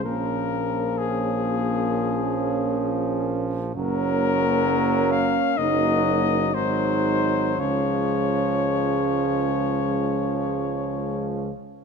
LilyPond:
<<
  \new Staff \with { instrumentName = "Cornet" } { \time 4/4 \key des \major \tempo 4 = 64 bes'4 aes'2~ aes'8 r8 | bes'4. f''8 ees''4 c''4 | des''2.~ des''8 r8 | }
  \new Staff \with { instrumentName = "French horn section" } { \time 4/4 \key des \major des'1 | des'2 ees'4 ees'4 | des'2.~ des'8 r8 | }
  \new Staff \with { instrumentName = "Euphonium" } { \time 4/4 \key des \major bes1 | bes2 bes4 aes4 | aes2.~ aes8 r8 | }
  \new Staff \with { instrumentName = "Trombone" } { \clef bass \time 4/4 \key des \major f1 | ges2 ges4 ges4 | f2.~ f8 r8 | }
  \new Staff \with { instrumentName = "Tuba" } { \clef bass \time 4/4 \key des \major bes,,1 | ges,,2 ges,,4 aes,,4 | des,2.~ des,8 r8 | }
>>